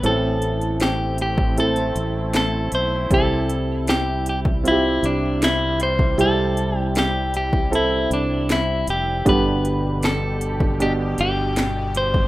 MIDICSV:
0, 0, Header, 1, 6, 480
1, 0, Start_track
1, 0, Key_signature, 0, "major"
1, 0, Tempo, 769231
1, 19, Time_signature, 4, 2, 24, 8
1, 7661, End_track
2, 0, Start_track
2, 0, Title_t, "Clean electric guitar"
2, 0, Program_c, 0, 27
2, 38, Note_on_c, 0, 69, 93
2, 483, Note_off_c, 0, 69, 0
2, 514, Note_on_c, 0, 67, 76
2, 730, Note_off_c, 0, 67, 0
2, 761, Note_on_c, 0, 67, 74
2, 995, Note_off_c, 0, 67, 0
2, 997, Note_on_c, 0, 69, 87
2, 1468, Note_off_c, 0, 69, 0
2, 1476, Note_on_c, 0, 69, 78
2, 1691, Note_off_c, 0, 69, 0
2, 1714, Note_on_c, 0, 72, 78
2, 1930, Note_off_c, 0, 72, 0
2, 1959, Note_on_c, 0, 69, 86
2, 2404, Note_off_c, 0, 69, 0
2, 2430, Note_on_c, 0, 67, 77
2, 2672, Note_off_c, 0, 67, 0
2, 2679, Note_on_c, 0, 67, 68
2, 2741, Note_off_c, 0, 67, 0
2, 2918, Note_on_c, 0, 64, 81
2, 3155, Note_on_c, 0, 62, 72
2, 3156, Note_off_c, 0, 64, 0
2, 3394, Note_off_c, 0, 62, 0
2, 3395, Note_on_c, 0, 64, 78
2, 3634, Note_off_c, 0, 64, 0
2, 3637, Note_on_c, 0, 72, 79
2, 3852, Note_off_c, 0, 72, 0
2, 3874, Note_on_c, 0, 69, 87
2, 4229, Note_off_c, 0, 69, 0
2, 4229, Note_on_c, 0, 67, 87
2, 4358, Note_off_c, 0, 67, 0
2, 4360, Note_on_c, 0, 67, 80
2, 4589, Note_off_c, 0, 67, 0
2, 4597, Note_on_c, 0, 67, 75
2, 4835, Note_off_c, 0, 67, 0
2, 4838, Note_on_c, 0, 64, 81
2, 5053, Note_off_c, 0, 64, 0
2, 5076, Note_on_c, 0, 62, 72
2, 5292, Note_off_c, 0, 62, 0
2, 5317, Note_on_c, 0, 64, 77
2, 5532, Note_off_c, 0, 64, 0
2, 5555, Note_on_c, 0, 67, 77
2, 5771, Note_off_c, 0, 67, 0
2, 5797, Note_on_c, 0, 71, 90
2, 6269, Note_off_c, 0, 71, 0
2, 6271, Note_on_c, 0, 69, 84
2, 6748, Note_off_c, 0, 69, 0
2, 6751, Note_on_c, 0, 67, 78
2, 6814, Note_off_c, 0, 67, 0
2, 6993, Note_on_c, 0, 67, 85
2, 7469, Note_off_c, 0, 67, 0
2, 7471, Note_on_c, 0, 72, 84
2, 7661, Note_off_c, 0, 72, 0
2, 7661, End_track
3, 0, Start_track
3, 0, Title_t, "Upright piano"
3, 0, Program_c, 1, 0
3, 0, Control_c, 1, 64, 127
3, 20, Note_on_c, 1, 60, 64
3, 23, Note_on_c, 1, 64, 59
3, 24, Note_on_c, 1, 52, 59
3, 25, Note_on_c, 1, 45, 59
3, 26, Note_on_c, 1, 69, 74
3, 27, Control_c, 1, 64, 0
3, 139, Control_c, 1, 64, 127
3, 717, Note_off_c, 1, 45, 0
3, 717, Note_off_c, 1, 52, 0
3, 932, Note_off_c, 1, 60, 0
3, 933, Note_off_c, 1, 64, 0
3, 935, Note_off_c, 1, 69, 0
3, 982, Note_on_c, 1, 60, 62
3, 985, Note_on_c, 1, 64, 54
3, 986, Note_on_c, 1, 69, 67
3, 1893, Note_off_c, 1, 60, 0
3, 1894, Note_off_c, 1, 64, 0
3, 1895, Note_off_c, 1, 69, 0
3, 1942, Note_on_c, 1, 60, 59
3, 1943, Note_on_c, 1, 55, 54
3, 1943, Note_on_c, 1, 64, 58
3, 1944, Note_on_c, 1, 48, 52
3, 1945, Note_on_c, 1, 67, 67
3, 1947, Control_c, 1, 64, 0
3, 2039, Control_c, 1, 64, 127
3, 2636, Note_off_c, 1, 55, 0
3, 2637, Note_off_c, 1, 48, 0
3, 2853, Note_off_c, 1, 60, 0
3, 2853, Note_off_c, 1, 64, 0
3, 2854, Note_off_c, 1, 67, 0
3, 2893, Note_on_c, 1, 60, 60
3, 2895, Note_on_c, 1, 64, 57
3, 2899, Note_on_c, 1, 65, 55
3, 2939, Note_on_c, 1, 67, 66
3, 2940, Note_off_c, 1, 65, 0
3, 3808, Note_off_c, 1, 60, 0
3, 3809, Note_off_c, 1, 64, 0
3, 3831, Note_off_c, 1, 67, 0
3, 3854, Note_on_c, 1, 60, 63
3, 3856, Note_on_c, 1, 48, 58
3, 3857, Note_on_c, 1, 55, 57
3, 3857, Note_on_c, 1, 64, 60
3, 3858, Note_on_c, 1, 67, 72
3, 4553, Note_off_c, 1, 48, 0
3, 4553, Note_off_c, 1, 55, 0
3, 4769, Note_off_c, 1, 60, 0
3, 4770, Note_off_c, 1, 64, 0
3, 4771, Note_off_c, 1, 67, 0
3, 4812, Note_on_c, 1, 60, 64
3, 4816, Note_on_c, 1, 64, 58
3, 4817, Note_on_c, 1, 69, 76
3, 5728, Note_off_c, 1, 60, 0
3, 5730, Note_off_c, 1, 64, 0
3, 5730, Note_off_c, 1, 69, 0
3, 5773, Note_on_c, 1, 59, 65
3, 5775, Note_on_c, 1, 43, 57
3, 5775, Note_on_c, 1, 50, 55
3, 5776, Note_on_c, 1, 62, 61
3, 5777, Note_on_c, 1, 67, 71
3, 5788, Control_c, 1, 64, 0
3, 5898, Control_c, 1, 64, 127
3, 6472, Note_off_c, 1, 43, 0
3, 6472, Note_off_c, 1, 50, 0
3, 6688, Note_off_c, 1, 59, 0
3, 6689, Note_off_c, 1, 62, 0
3, 6690, Note_off_c, 1, 67, 0
3, 6736, Note_on_c, 1, 47, 64
3, 6738, Note_on_c, 1, 62, 60
3, 6741, Note_on_c, 1, 67, 72
3, 7650, Note_off_c, 1, 47, 0
3, 7651, Note_off_c, 1, 62, 0
3, 7652, Note_off_c, 1, 67, 0
3, 7661, End_track
4, 0, Start_track
4, 0, Title_t, "Analog synth pad"
4, 0, Program_c, 2, 89
4, 21, Note_on_c, 2, 57, 70
4, 21, Note_on_c, 2, 60, 77
4, 22, Note_on_c, 2, 64, 86
4, 1921, Note_off_c, 2, 57, 0
4, 1921, Note_off_c, 2, 60, 0
4, 1938, Note_on_c, 2, 48, 77
4, 1940, Note_on_c, 2, 55, 70
4, 5753, Note_off_c, 2, 48, 0
4, 5755, Note_off_c, 2, 55, 0
4, 5755, Note_off_c, 2, 64, 0
4, 5775, Note_on_c, 2, 50, 77
4, 5775, Note_on_c, 2, 67, 86
4, 5776, Note_on_c, 2, 47, 71
4, 7661, Note_off_c, 2, 47, 0
4, 7661, Note_off_c, 2, 50, 0
4, 7661, Note_off_c, 2, 67, 0
4, 7661, End_track
5, 0, Start_track
5, 0, Title_t, "Fingered electric bass"
5, 0, Program_c, 3, 33
5, 21, Note_on_c, 3, 33, 99
5, 1195, Note_off_c, 3, 33, 0
5, 1221, Note_on_c, 3, 33, 89
5, 1675, Note_off_c, 3, 33, 0
5, 1699, Note_on_c, 3, 35, 77
5, 1922, Note_off_c, 3, 35, 0
5, 1937, Note_on_c, 3, 36, 82
5, 3113, Note_off_c, 3, 36, 0
5, 3138, Note_on_c, 3, 36, 77
5, 3833, Note_off_c, 3, 36, 0
5, 3855, Note_on_c, 3, 36, 86
5, 5032, Note_off_c, 3, 36, 0
5, 5059, Note_on_c, 3, 36, 81
5, 5514, Note_off_c, 3, 36, 0
5, 5539, Note_on_c, 3, 29, 86
5, 5762, Note_off_c, 3, 29, 0
5, 5778, Note_on_c, 3, 31, 97
5, 6954, Note_off_c, 3, 31, 0
5, 6980, Note_on_c, 3, 31, 89
5, 7661, Note_off_c, 3, 31, 0
5, 7661, End_track
6, 0, Start_track
6, 0, Title_t, "Drums"
6, 22, Note_on_c, 9, 42, 72
6, 84, Note_off_c, 9, 42, 0
6, 261, Note_on_c, 9, 42, 60
6, 323, Note_off_c, 9, 42, 0
6, 383, Note_on_c, 9, 42, 42
6, 446, Note_off_c, 9, 42, 0
6, 498, Note_on_c, 9, 42, 77
6, 508, Note_on_c, 9, 38, 92
6, 560, Note_off_c, 9, 42, 0
6, 570, Note_off_c, 9, 38, 0
6, 737, Note_on_c, 9, 42, 67
6, 800, Note_off_c, 9, 42, 0
6, 859, Note_on_c, 9, 36, 90
6, 922, Note_off_c, 9, 36, 0
6, 983, Note_on_c, 9, 42, 87
6, 1046, Note_off_c, 9, 42, 0
6, 1098, Note_on_c, 9, 42, 43
6, 1161, Note_off_c, 9, 42, 0
6, 1221, Note_on_c, 9, 42, 66
6, 1283, Note_off_c, 9, 42, 0
6, 1457, Note_on_c, 9, 42, 82
6, 1462, Note_on_c, 9, 38, 102
6, 1520, Note_off_c, 9, 42, 0
6, 1525, Note_off_c, 9, 38, 0
6, 1696, Note_on_c, 9, 42, 77
6, 1758, Note_off_c, 9, 42, 0
6, 1938, Note_on_c, 9, 36, 94
6, 1938, Note_on_c, 9, 42, 68
6, 2001, Note_off_c, 9, 36, 0
6, 2001, Note_off_c, 9, 42, 0
6, 2181, Note_on_c, 9, 42, 64
6, 2243, Note_off_c, 9, 42, 0
6, 2418, Note_on_c, 9, 42, 74
6, 2427, Note_on_c, 9, 38, 94
6, 2480, Note_off_c, 9, 42, 0
6, 2490, Note_off_c, 9, 38, 0
6, 2659, Note_on_c, 9, 42, 70
6, 2721, Note_off_c, 9, 42, 0
6, 2777, Note_on_c, 9, 36, 86
6, 2840, Note_off_c, 9, 36, 0
6, 2904, Note_on_c, 9, 42, 87
6, 2966, Note_off_c, 9, 42, 0
6, 3143, Note_on_c, 9, 42, 72
6, 3205, Note_off_c, 9, 42, 0
6, 3382, Note_on_c, 9, 42, 85
6, 3387, Note_on_c, 9, 38, 109
6, 3444, Note_off_c, 9, 42, 0
6, 3450, Note_off_c, 9, 38, 0
6, 3617, Note_on_c, 9, 42, 78
6, 3680, Note_off_c, 9, 42, 0
6, 3738, Note_on_c, 9, 36, 81
6, 3801, Note_off_c, 9, 36, 0
6, 3862, Note_on_c, 9, 42, 72
6, 3925, Note_off_c, 9, 42, 0
6, 4100, Note_on_c, 9, 42, 60
6, 4163, Note_off_c, 9, 42, 0
6, 4339, Note_on_c, 9, 42, 75
6, 4349, Note_on_c, 9, 38, 96
6, 4401, Note_off_c, 9, 42, 0
6, 4411, Note_off_c, 9, 38, 0
6, 4579, Note_on_c, 9, 42, 66
6, 4642, Note_off_c, 9, 42, 0
6, 4698, Note_on_c, 9, 36, 82
6, 4760, Note_off_c, 9, 36, 0
6, 4824, Note_on_c, 9, 42, 87
6, 4886, Note_off_c, 9, 42, 0
6, 5062, Note_on_c, 9, 42, 72
6, 5124, Note_off_c, 9, 42, 0
6, 5300, Note_on_c, 9, 42, 80
6, 5305, Note_on_c, 9, 38, 99
6, 5362, Note_off_c, 9, 42, 0
6, 5367, Note_off_c, 9, 38, 0
6, 5538, Note_on_c, 9, 42, 79
6, 5600, Note_off_c, 9, 42, 0
6, 5778, Note_on_c, 9, 36, 94
6, 5779, Note_on_c, 9, 42, 74
6, 5841, Note_off_c, 9, 36, 0
6, 5842, Note_off_c, 9, 42, 0
6, 6021, Note_on_c, 9, 42, 62
6, 6083, Note_off_c, 9, 42, 0
6, 6256, Note_on_c, 9, 42, 75
6, 6266, Note_on_c, 9, 38, 92
6, 6319, Note_off_c, 9, 42, 0
6, 6328, Note_off_c, 9, 38, 0
6, 6497, Note_on_c, 9, 42, 74
6, 6559, Note_off_c, 9, 42, 0
6, 6617, Note_on_c, 9, 36, 83
6, 6679, Note_off_c, 9, 36, 0
6, 6741, Note_on_c, 9, 42, 91
6, 6804, Note_off_c, 9, 42, 0
6, 6976, Note_on_c, 9, 42, 71
6, 7039, Note_off_c, 9, 42, 0
6, 7216, Note_on_c, 9, 42, 82
6, 7221, Note_on_c, 9, 38, 100
6, 7278, Note_off_c, 9, 42, 0
6, 7283, Note_off_c, 9, 38, 0
6, 7454, Note_on_c, 9, 42, 82
6, 7517, Note_off_c, 9, 42, 0
6, 7577, Note_on_c, 9, 36, 83
6, 7639, Note_off_c, 9, 36, 0
6, 7661, End_track
0, 0, End_of_file